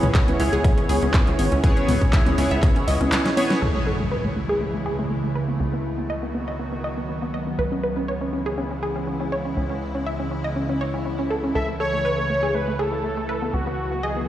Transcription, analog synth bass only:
0.03 0.12 C#2 medium
0.28 0.37 C#2 medium
0.40 0.50 C#2 loud
0.53 0.62 C#2 medium
0.89 0.99 C#2 loud
1.02 1.11 C#2 medium
1.27 1.36 C#2 medium
1.39 1.49 G#1 loud
1.52 1.61 C#2 medium
1.88 1.99 C#2 medium
2.01 2.11 C#2 medium
2.26 2.35 C#2 medium
2.38 2.48 C#2 loud
2.51 2.60 C#2 medium
2.88 2.98 C#2 loud
3.01 3.10 C#2 medium
3.62 5.58 C#2 medium
5.60 7.56 C#2 medium
7.59 9.55 C#2 medium
9.57 11.53 C#2 medium
11.55 13.51 C#2 medium
13.54 14.28 C#2 medium

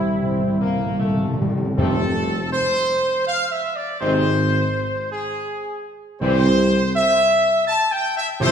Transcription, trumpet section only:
0.00 0.95 E4 loud
1.78 2.49 A4 loud
2.53 3.23 C5 loud
3.27 3.50 F5 loud
3.52 3.76 E5 loud
3.76 4.01 D5 loud
4.01 5.08 C5 loud
5.12 5.81 G#4 loud
6.22 6.91 C5 loud
6.95 7.64 E5 loud
7.67 7.90 A5 loud
7.92 8.17 G5 loud
8.17 8.28 E5 loud
8.41 8.52 C5 loud

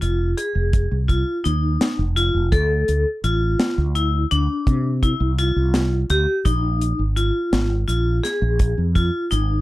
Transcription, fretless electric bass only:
0.02 0.33 F1 medium
0.55 0.86 F1 medium
0.91 1.22 C2 medium
1.45 1.76 D#2 medium
1.99 2.29 F1 medium
2.34 2.50 F1 medium
2.52 2.83 D2 medium
2.88 3.04 D2 medium
3.24 3.54 A1 medium
3.78 4.24 D2 medium
4.32 4.47 D2 medium
4.67 5.13 C3 medium
5.20 5.51 C2 medium
5.56 6.02 C2 medium
6.10 6.25 D2 medium
6.45 6.92 A#1 medium
6.99 7.30 G#1 medium
7.52 7.83 G#1 medium
7.88 8.19 A#1 medium
8.42 8.73 A#1 medium
8.78 9.09 F2 medium
9.32 9.61 G#1 medium

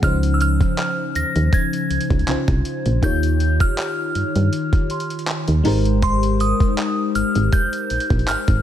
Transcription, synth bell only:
0.04 0.35 F6 loud
0.34 0.40 E6 medium
0.41 1.18 F6 loud
1.16 1.54 A#6 loud
1.54 3.08 G#6 loud
3.04 3.63 G6 loud
3.61 5.07 F6 medium
6.03 6.42 C6 loud
6.41 7.18 D#6 medium
7.15 7.54 F6 medium
7.53 8.30 G6 loud
8.28 8.62 F6 loud

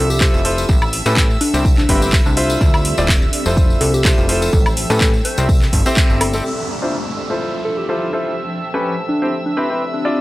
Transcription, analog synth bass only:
0.00 0.30 C2 medium
0.34 0.66 F1 medium
0.69 1.02 A1 loud
1.06 1.38 A2 medium
1.54 1.86 C2 loud
1.89 2.22 G1 medium
2.26 2.58 C2 medium
2.61 2.94 D2 loud
2.98 3.30 D1 medium
3.46 3.78 F1 loud
3.81 4.14 C2 medium
4.18 4.50 F1 medium
4.53 4.86 A1 medium
4.90 5.22 A2 medium
5.38 5.70 C2 loud
5.73 5.84 G1 loud
6.10 6.42 G1 medium

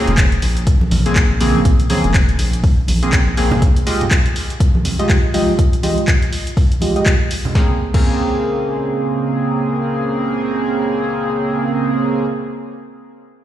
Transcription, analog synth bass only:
0.07 0.39 F1 loud
0.42 0.77 A#1 medium
0.91 1.26 A#1 medium
1.30 1.62 A#1 medium
1.65 1.77 A#1 loud
2.04 2.36 F1 loud
2.39 2.74 A#1 medium
2.88 3.23 A#1 medium
3.27 3.59 A#1 medium

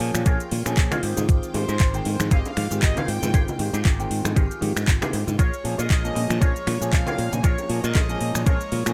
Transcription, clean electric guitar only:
0.26 0.59 F4 medium
0.26 0.59 G#4 medium
0.26 0.59 A#4 medium
0.26 0.59 C#5 loud
0.91 1.02 F4 loud
0.91 1.02 G#4 medium
0.91 1.03 A#4 medium
0.91 1.03 C#5 loud
1.03 1.45 D#4 loud
1.03 1.45 G4 medium
1.03 1.45 G#4 medium
1.03 1.46 C5 loud
1.54 muted clean electric guitar stroke soft
1.68 2.00 D#4 loud
1.68 2.00 G4 medium
1.68 2.00 G#4 medium
1.68 2.00 A#4 loud
2.31 2.64 D#4 medium
2.31 2.64 G4 medium
2.31 2.64 G#4 medium
2.31 2.65 C5 loud
2.97 3.15 D#4 medium
2.97 3.16 G4 medium
2.97 3.16 G#4 medium
2.97 3.16 C5 loud
3.33 3.48 D#4 loud
3.33 3.48 G4 loud
3.33 3.48 G#4 loud
3.33 3.49 C5 loud
3.59 muted clean electric guitar stroke soft
3.73 4.05 D#4 loud
3.73 4.05 G4 medium
3.73 4.05 G#4 medium
3.73 4.06 A#4 loud
4.36 4.69 D#4 medium
4.36 4.69 G4 medium
4.36 4.69 G#4 medium
4.36 4.70 A#4 loud
5.01 5.20 D#4 medium
5.01 5.20 G4 medium
5.01 5.21 G#4 medium
5.01 5.21 C5 loud
5.38 5.53 F4 loud
5.38 5.53 G#4 medium
5.38 5.53 A#4 loud
5.38 5.54 C#5 loud
5.64 muted clean electric guitar stroke soft
5.78 6.10 F4 medium
5.78 6.10 G#4 medium
5.78 6.10 A#4 medium
5.78 6.10 C#5 loud
6.41 6.74 F4 medium
6.41 6.74 G#4 medium
6.41 6.74 A#4 medium
6.41 6.75 C#5 loud
7.06 7.25 F4 medium
7.06 7.26 G#4 medium
7.06 7.26 A#4 medium
7.06 7.26 C#5 loud
7.43 7.58 F4 loud
7.43 7.58 G#4 loud
7.43 7.58 A#4 loud
7.43 7.59 C#5 loud
7.69 muted clean electric guitar stroke soft
7.83 8.15 F4 medium
7.83 8.15 G#4 medium
7.83 8.15 A#4 medium
7.83 8.16 C#5 loud
8.45 8.79 F4 medium
8.45 8.79 G#4 medium
8.45 8.79 A#4 medium
8.45 8.80 C#5 loud

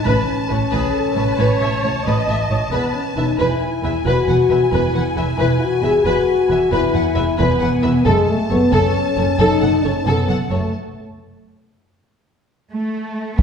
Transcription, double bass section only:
0.06 0.14 A1 soft
0.50 0.58 A1 soft
0.73 0.81 A1 soft
1.17 1.25 A1 soft
1.39 1.47 A1 soft
1.61 1.69 A1 soft
1.83 1.91 A1 soft
2.05 2.13 A1 soft
2.27 2.35 A1 soft
2.49 2.57 A1 soft
2.71 2.79 E1 soft
3.16 3.24 E1 soft
3.39 3.47 E1 soft
3.83 3.91 E1 soft
4.05 4.13 E1 soft
4.27 4.35 E1 soft
4.50 4.58 E1 soft
4.72 4.80 E1 soft
4.95 5.03 E1 soft
5.18 5.26 E1 soft
5.39 5.47 E1 soft
5.83 5.91 E1 soft
6.05 6.13 E1 soft
6.49 6.57 E1 soft
6.71 6.79 E1 soft
6.94 7.02 E1 soft
7.16 7.24 E1 soft
7.39 7.47 E1 medium
7.61 7.69 E1 soft
7.83 7.91 E1 soft
8.06 8.14 F#1 medium
8.50 8.58 F#1 soft
8.72 8.80 F#1 medium
9.16 9.24 F#1 soft
9.39 9.47 F#1 medium
9.62 9.70 F#1 soft
9.84 9.92 F#1 soft
10.06 10.14 F#1 medium
10.28 10.36 F#1 soft
10.51 10.59 F#1 soft
13.38 13.42 E2 soft

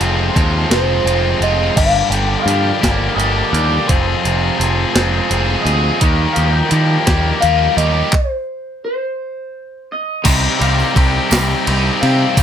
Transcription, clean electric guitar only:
0.00 0.69 C5 medium
0.70 1.44 C5 medium
1.42 1.76 D#5 medium
1.76 2.10 F5 medium
2.10 2.26 G5 medium
2.27 2.38 G5 medium
2.39 2.42 D#5 medium
2.39 3.15 F5 loud
3.15 3.50 D#5 medium
3.50 3.89 D5 medium
3.88 4.91 C5 medium
4.94 5.61 C5 medium
5.62 6.31 D#5 medium
6.33 6.52 F5 medium
6.52 6.68 G5 loud
6.69 7.37 G5 loud
7.40 7.76 F5 medium
7.77 8.14 D#5 medium
8.14 8.83 C5 medium
8.85 9.93 C5 loud
9.92 10.61 D#5 medium
10.62 10.94 F5 medium
10.96 11.98 G5 loud
12.01 12.43 F5 loud

